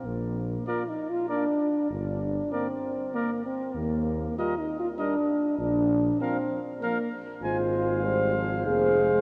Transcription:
<<
  \new Staff \with { instrumentName = "Trumpet" } { \time 3/4 \key bes \major \tempo 4 = 98 r4 d''4 d''4 | r4 d''4 d''4 | r4 ees''4 ees''4 | r4 f''4 f''4 |
\key f \dorian aes''8 f''4. f''4 | }
  \new Staff \with { instrumentName = "Flugelhorn" } { \time 3/4 \key bes \major r4 bes'4 bes'4 | r4 bes'4 bes'4 | r4 bes'4 bes'4 | r4 bes'4 bes'4 |
\key f \dorian c''4 c''2 | }
  \new Staff \with { instrumentName = "French horn" } { \time 3/4 \key bes \major bes4 \tuplet 3/2 { f'8 ees'8 f'8 } d'4 | d'4 c'4 bes8 c'8 | bes4 \tuplet 3/2 { f'8 ees'8 f'8 } d'4 | d'4 c'8 r8 bes8 r8 |
\key f \dorian f'4 c''4 aes'4 | }
  \new Staff \with { instrumentName = "Trombone" } { \clef bass \time 3/4 \key bes \major r4 bes4 bes4 | r4 bes4 bes4 | r4 g4 g4 | r4 f4 f4 |
\key f \dorian aes4 g8 f8 bes8 aes8 | }
  \new Staff \with { instrumentName = "Bass trombone" } { \clef bass \time 3/4 \key bes \major bes,,4 r2 | g,,4 r2 | ees,4 r2 | bes,,4 r2 |
\key f \dorian aes,,2 f,,4 | }
>>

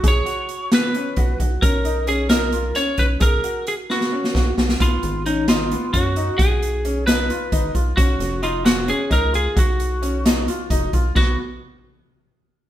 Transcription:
<<
  \new Staff \with { instrumentName = "Lead electric guitar" } { \time 7/8 \key b \lydian \tempo 4 = 132 cis''4. b'4. r8 | ais'4 gis'8 ais'4 cis''8 b'8 | ais'4 gis'8 fis'4. r8 | eis'4 dis'8 eis'4 fis'4 |
gis'4. b'4. r8 | fis'4 eis'8 fis'8 gis'8 ais'8 gis'8 | fis'2. r8 | fis'8 r2. | }
  \new Staff \with { instrumentName = "Grand piano" } { \time 7/8 \key b \lydian gis'8 fis'4 b8 cis'8 fis'8 fis'8 | cis'8 dis'8 cis'8 dis'8 eis'8 cis'4 | gis'8 fis'4 b8 cis'8 fis'8 fis'8 | b4 cis'8 dis'8 b8 cis'8 dis'8 |
fis'4 cis'8 dis'8 eis'8 dis'8 eis'8 | cis'4 dis'8 eis'8 cis'8 dis'8 eis'8 | fis'4 cis'8 dis'8 eis'8 dis'8 eis'8 | b8 r2. | }
  \new Staff \with { instrumentName = "Analog synth bass" } { \clef bass \time 7/8 \key b \lydian b,,8 r2 b,,8 b,,8 | b,,2. b,,8 | b,,8 r2 b,,8 b,,8 | b,,8 gis,,2 fis,4 |
b,,2~ b,,8 gis,,8 b,,8 | b,,8 eis,,2 cis,4 | b,,2~ b,,8 eis,,8 b,,8 | b,,8 r2. | }
  \new DrumStaff \with { instrumentName = "Drums" } \drummode { \time 7/8 <hh bd>8 hh8 hh8 <hh sn>8 hh8 <hh bd>8 <hh bd>8 | <hh bd>8 hh8 hh8 <hh sn>8 hh8 <hh sn>8 <hh bd>8 | <hh bd>8 hh8 hh8 sn16 sn8 sn16 <bd sn>8 sn16 sn16 | <hh bd>8 hh8 hh8 <hh sn>8 hh8 <hh bd>8 hh8 |
<hh bd>8 hh8 hh8 <hh sn>8 hh8 <hh bd>8 <hh bd>8 | <hh bd>8 <hh sn>8 hh8 <hh sn>8 hh8 <hh bd sn>8 hh8 | <hh bd>8 hh8 hh8 <hh sn>8 hh8 <hh bd>8 <hh bd>8 | <cymc bd>4. r4 r4 | }
>>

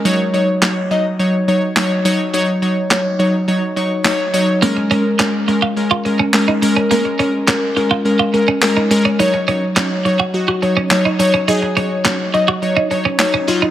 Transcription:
<<
  \new Staff \with { instrumentName = "Synth keys" } { \time 4/4 \key ees \minor \tempo 4 = 105 <ges ees' des''>16 r16 <ges ees' des''>16 r16 <ges ees' des''>16 r16 <ges ees' ees''>16 r16 <ges ees' des''>16 r16 <ges ees' des''>16 r16 <ges ees' des''>16 r16 <ges ees' des''>16 r16 | <ges ees' des''>16 r16 <ges ees' des''>16 r16 <ges ees' des''>16 r16 <ges ees' des''>16 r16 <ges ees' des''>16 r16 <ges ees' des''>16 r16 <ges ees' des''>16 r16 <ges ees' des''>16 r16 | <aes des' bes'>16 r16 <aes des' bes'>16 r16 <aes des' bes'>16 r16 <aes des' bes'>16 r16 <aes des' bes'>16 r16 <aes des' bes'>16 r16 <aes des' bes'>16 r16 <aes des' bes'>16 r16 | <aes des' bes'>16 r16 <aes des' bes'>16 r16 <aes des' bes'>16 r16 <aes des' bes'>16 r16 <aes des' bes'>16 r16 <aes des' bes'>16 r16 <aes des' bes'>16 r16 <aes des' bes'>16 r16 |
<ges ees' des''>16 r16 <ges ees' des''>16 r16 <ges ees' des''>16 r16 <ges ees' des''>16 r16 <ges ees' ges'>16 r16 <ges ees' des''>16 r16 <ges ees' des''>16 r16 <ges ees' des''>16 r16 | <ges ees' aes'>16 r16 <ges ees' des''>16 r16 <ges ees' des''>16 r16 <ges ees' ees''>16 r16 <ges ees' des''>16 r16 <ges ees' des''>16 r16 <ges ees' des''>16 r16 <ges ees' f'>16 r16 | }
  \new Staff \with { instrumentName = "Clean electric guitar" } { \time 4/4 \key ees \minor r1 | r1 | bes16 r16 des'16 r16 des'16 r8 f'16 r16 f'16 r16 des'16 r16 ees'16 r16 des'16 | bes16 r16 des'16 r16 des'16 r8 f'16 r16 f'16 r16 des'16 r16 ees'16 r16 des'16 |
ees'16 r16 des'16 r16 des'16 r8 ges'16 r16 ges'16 r16 des'16 r16 ees'16 r16 des'16 | ees'16 r16 des'16 r16 des'16 r8 ges'16 r16 ees'16 r16 des'16 r16 des'16 r16 ees'16 | }
  \new DrumStaff \with { instrumentName = "Drums" } \drummode { \time 4/4 r4 <hc sn>4 r4 <hc sn>4 | r4 <hc sn>4 r4 <hc sn>4 | r4 <hc sn>4 r4 <hc sn>4 | r4 <hc sn>4 r4 <hc sn>4 |
r4 <hc sn>4 r4 <hc sn>4 | r4 <hc sn>4 r4 <hc sn>4 | }
>>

